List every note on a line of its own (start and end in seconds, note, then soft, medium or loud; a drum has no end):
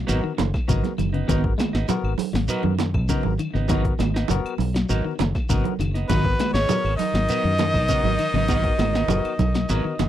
0.07 0.21 G#1 loud
0.07 0.23 F#3 loud
0.07 0.22 B3 loud
0.07 0.32 B3 medium
0.07 0.21 D#4 loud
0.07 0.32 F#4 medium
0.07 0.32 A#4 medium
0.07 snare soft
0.07 closed hi-hat medium
0.07 claves medium
0.07 shekere medium
0.22 0.31 D#3 medium
0.22 muted clean electric guitar stroke soft
0.37 0.51 F#1 medium
0.37 0.54 D#3 medium
0.37 muted clean electric guitar stroke soft
0.37 snare medium
0.37 closed hi-hat medium
0.37 high conga loud
0.37 shekere soft
0.54 kick medium
0.54 snare soft
0.54 claves medium
0.68 0.81 G#1 loud
0.68 0.84 C#3 medium
0.68 0.83 F#3 medium
0.68 0.92 B3 medium
0.68 0.82 D#4 medium
0.68 0.92 F#4 medium
0.68 0.92 A#4 medium
0.68 muted clean electric guitar stroke medium
0.68 kick medium
0.68 closed hi-hat medium
0.68 shekere loud
0.83 muted clean electric guitar stroke medium
0.83 snare soft
0.83 closed hi-hat soft
0.83 high conga medium
0.98 1.24 F#1 medium
0.98 1.06 D#3 medium
0.98 muted clean electric guitar stroke medium
0.98 closed hi-hat medium
0.98 high conga medium
0.98 claves medium
0.98 shekere soft
1.13 1.21 C#3 medium
1.13 1.27 B3 medium
1.13 1.28 D#4 medium
1.13 closed hi-hat soft
1.28 1.54 G#1 loud
1.28 1.44 D#3 loud
1.28 1.43 B3 loud
1.28 1.52 B3 medium
1.28 1.42 D#4 loud
1.28 1.52 F#4 medium
1.28 1.52 A#4 loud
1.28 muted clean electric guitar stroke loud
1.28 kick loud
1.28 closed hi-hat medium
1.28 low conga medium
1.28 shekere loud
1.44 muted clean electric guitar stroke medium
1.44 kick medium
1.58 1.73 G#3 medium
1.58 muted clean electric guitar stroke soft
1.58 snare medium
1.58 closed hi-hat medium
1.58 low conga medium
1.58 claves medium
1.58 shekere soft
1.73 1.86 G#1 medium
1.73 1.87 B3 soft
1.73 1.87 D#4 medium
1.73 snare medium
1.88 2.04 F#3 medium
1.88 2.12 B3 loud
1.88 2.13 F#4 medium
1.88 2.13 A#4 loud
1.88 muted clean electric guitar stroke soft
1.88 closed hi-hat medium
1.88 high conga medium
1.88 shekere loud
2.04 2.16 G#1 medium
2.04 claves medium
2.18 muted fingered electric bass stroke soft
2.18 open hi-hat medium
2.18 high conga medium
2.18 shekere soft
2.33 2.46 G#1 loud
2.33 2.49 F#3 medium
2.33 muted clean electric guitar stroke soft
2.33 snare medium
2.48 2.64 F#3 medium
2.48 2.63 B3 loud
2.48 2.73 B3 medium
2.48 2.63 D#4 loud
2.48 2.73 F#4 medium
2.48 2.73 A#4 loud
2.48 closed hi-hat medium
2.48 claves medium
2.48 shekere medium
2.63 2.96 F#2 medium
2.63 2.71 D#3 medium
2.63 muted clean electric guitar stroke soft
2.63 high conga medium
2.79 2.94 D#3 medium
2.79 muted clean electric guitar stroke soft
2.79 snare medium
2.79 closed hi-hat medium
2.79 high conga medium
2.79 shekere soft
2.94 3.06 B1 medium
2.94 kick medium
2.94 claves medium
3.09 3.24 C#3 medium
3.09 3.24 F#3 medium
3.09 3.23 B3 medium
3.09 3.33 B3 medium
3.09 3.22 D#4 medium
3.09 3.33 F#4 medium
3.09 3.33 A#4 loud
3.09 kick medium
3.09 closed hi-hat medium
3.09 shekere medium
3.23 3.37 G#1 medium
3.23 muted clean electric guitar stroke medium
3.23 high conga medium
3.38 3.47 D#3 medium
3.38 muted clean electric guitar stroke soft
3.38 closed hi-hat medium
3.38 claves medium
3.38 shekere soft
3.54 3.91 G#1 medium
3.54 3.62 C#3 medium
3.54 3.67 B3 medium
3.54 3.68 D#4 medium
3.54 snare soft
3.68 3.84 D#3 loud
3.68 3.84 F#3 medium
3.68 3.84 B3 loud
3.68 3.93 B3 loud
3.68 3.83 D#4 loud
3.68 3.93 F#4 loud
3.68 3.93 A#4 loud
3.68 kick loud
3.68 snare soft
3.68 closed hi-hat medium
3.68 low conga medium
3.68 shekere medium
3.84 muted clean electric guitar stroke soft
3.84 kick medium
3.84 closed hi-hat soft
3.99 4.24 G#1 medium
3.99 4.14 G#3 medium
3.99 muted clean electric guitar stroke soft
3.99 snare medium
3.99 closed hi-hat medium
3.99 low conga medium
3.99 claves medium
3.99 shekere soft
4.14 4.28 B3 medium
4.14 4.29 D#4 medium
4.14 snare medium
4.28 4.42 F#1 loud
4.28 4.44 F#3 medium
4.28 4.53 B3 loud
4.28 4.53 F#4 medium
4.28 4.53 A#4 loud
4.28 muted clean electric guitar stroke medium
4.28 closed hi-hat medium
4.28 high conga medium
4.28 shekere medium
4.44 muted fingered electric bass stroke soft
4.44 closed hi-hat soft
4.44 claves medium
4.58 4.84 B1 loud
4.58 open hi-hat medium
4.58 high conga medium
4.58 shekere soft
4.74 4.90 F#3 medium
4.74 muted clean electric guitar stroke medium
4.74 snare medium
4.74 closed hi-hat soft
4.89 5.02 G#1 loud
4.89 5.04 F#3 medium
4.89 5.12 B3 medium
4.89 5.03 D#4 loud
4.89 5.13 F#4 medium
4.89 5.13 A#4 loud
4.89 muted clean electric guitar stroke medium
4.89 closed hi-hat medium
4.89 claves medium
4.89 shekere loud
5.04 5.12 D#3 medium
5.04 muted clean electric guitar stroke medium
5.19 5.32 F#1 medium
5.19 5.35 D#3 medium
5.19 muted clean electric guitar stroke soft
5.19 snare medium
5.19 closed hi-hat medium
5.19 high conga loud
5.19 shekere soft
5.35 kick medium
5.35 snare soft
5.35 claves medium
5.49 5.62 G#1 loud
5.49 5.65 C#3 medium
5.49 5.65 F#3 medium
5.49 5.73 B3 medium
5.49 5.64 B3 medium
5.49 5.63 D#4 medium
5.49 5.73 F#4 medium
5.49 5.73 A#4 loud
5.49 kick medium
5.49 closed hi-hat medium
5.49 shekere loud
5.64 muted clean electric guitar stroke medium
5.64 closed hi-hat soft
5.64 high conga medium
5.79 6.04 F#1 medium
5.79 5.88 D#3 medium
5.79 muted clean electric guitar stroke soft
5.79 snare soft
5.79 closed hi-hat medium
5.79 claves medium
5.79 shekere soft
5.94 6.09 B3 soft
5.94 6.09 D#4 medium
5.94 muted clean electric guitar stroke medium
5.94 snare soft
5.94 closed hi-hat soft
6.09 6.34 G#1 loud
6.09 6.51 B2 medium
6.09 6.25 D#3 loud
6.09 6.25 F#3 medium
6.09 6.51 B3 medium
6.09 6.24 B3 medium
6.09 6.33 B3 medium
6.09 6.22 D#4 medium
6.09 6.33 F#4 medium
6.09 6.33 A#4 medium
6.09 6.51 B4 loud
6.09 kick loud
6.09 snare soft
6.09 closed hi-hat medium
6.09 low conga medium
6.09 shekere medium
6.24 muted clean electric guitar stroke soft
6.24 kick medium
6.39 6.55 G#3 medium
6.39 muted clean electric guitar stroke soft
6.39 snare medium
6.39 closed hi-hat medium
6.39 low conga medium
6.39 claves medium
6.39 shekere soft
6.53 6.66 G#1 medium
6.53 6.95 C#3 loud
6.53 6.69 B3 medium
6.53 6.97 C#4 medium
6.53 6.69 D#4 medium
6.53 6.96 C#5 loud
6.53 snare medium
6.69 6.84 F#3 medium
6.69 6.93 B3 medium
6.69 6.93 F#4 medium
6.69 6.93 A#4 loud
6.69 closed hi-hat medium
6.69 high conga loud
6.69 shekere loud
6.84 6.97 G#1 medium
6.84 claves medium
6.96 10.09 D#3 loud
6.96 10.09 D#4 loud
6.96 10.09 D#5 loud
6.96 open hi-hat medium
6.96 high conga medium
7.00 shekere soft
7.14 7.26 G#1 medium
7.14 7.30 F#3 medium
7.14 muted clean electric guitar stroke soft
7.14 snare medium
7.29 7.44 F#3 medium
7.29 7.44 B3 medium
7.29 7.53 B3 medium
7.29 7.43 D#4 medium
7.29 7.53 F#4 medium
7.29 7.53 A#4 medium
7.29 closed hi-hat medium
7.29 claves medium
7.29 shekere loud
7.44 7.76 F#2 medium
7.44 7.52 D#3 medium
7.44 muted clean electric guitar stroke soft
7.58 7.75 D#3 medium
7.58 muted clean electric guitar stroke soft
7.58 snare medium
7.58 closed hi-hat medium
7.58 high conga loud
7.58 shekere soft
7.74 7.87 B1 medium
7.74 kick medium
7.74 claves medium
7.88 8.04 C#3 medium
7.88 8.04 F#3 medium
7.88 8.12 B3 medium
7.88 8.04 B3 medium
7.88 8.03 D#4 medium
7.88 8.12 F#4 medium
7.88 8.12 A#4 medium
7.88 kick medium
7.88 closed hi-hat medium
7.88 shekere loud
8.04 8.16 G#1 medium
8.04 muted clean electric guitar stroke medium
8.04 high conga medium
8.19 8.27 D#3 medium
8.19 muted clean electric guitar stroke medium
8.19 closed hi-hat medium
8.19 claves medium
8.19 shekere soft
8.34 8.71 G#1 medium
8.34 8.41 C#3 medium
8.34 8.48 B3 soft
8.34 8.48 D#4 medium
8.34 snare soft
8.34 high conga medium
8.48 8.64 F#3 loud
8.48 8.64 B3 medium
8.48 8.73 B3 medium
8.48 8.63 D#4 loud
8.48 8.72 F#4 medium
8.48 8.73 A#4 loud
8.48 muted clean electric guitar stroke loud
8.48 kick loud
8.48 snare soft
8.48 closed hi-hat medium
8.48 low conga medium
8.48 shekere medium
8.64 kick medium
8.64 closed hi-hat soft
8.79 9.04 G#1 medium
8.79 8.94 G#3 medium
8.79 muted clean electric guitar stroke soft
8.79 snare medium
8.79 closed hi-hat medium
8.79 low conga medium
8.79 claves medium
8.79 shekere soft
8.93 9.08 B3 soft
8.93 9.09 D#4 medium
8.93 snare medium
8.93 low conga medium
9.08 9.21 F#1 loud
9.08 9.24 F#3 medium
9.08 9.32 B3 loud
9.08 9.32 F#4 loud
9.08 9.32 A#4 loud
9.08 muted clean electric guitar stroke soft
9.08 closed hi-hat medium
9.08 high conga loud
9.08 shekere medium
9.25 muted fingered electric bass stroke soft
9.25 closed hi-hat soft
9.25 claves medium
9.39 9.64 B1 loud
9.39 kick medium
9.39 closed hi-hat medium
9.39 high conga medium
9.39 shekere soft
9.54 9.70 F#3 medium
9.54 muted clean electric guitar stroke soft
9.54 snare medium
9.54 closed hi-hat soft
9.69 9.82 G#1 loud
9.69 9.84 F#3 medium
9.69 9.84 B3 medium
9.69 9.93 B3 medium
9.69 9.83 D#4 medium
9.69 9.93 F#4 medium
9.69 9.93 A#4 medium
9.69 closed hi-hat medium
9.69 claves medium
9.69 shekere medium
9.84 9.92 D#3 medium
9.84 muted clean electric guitar stroke medium
9.99 10.09 F#1 medium
9.99 10.09 D#3 medium
9.99 muted clean electric guitar stroke soft
9.99 snare medium
9.99 closed hi-hat medium
9.99 high conga loud
9.99 shekere soft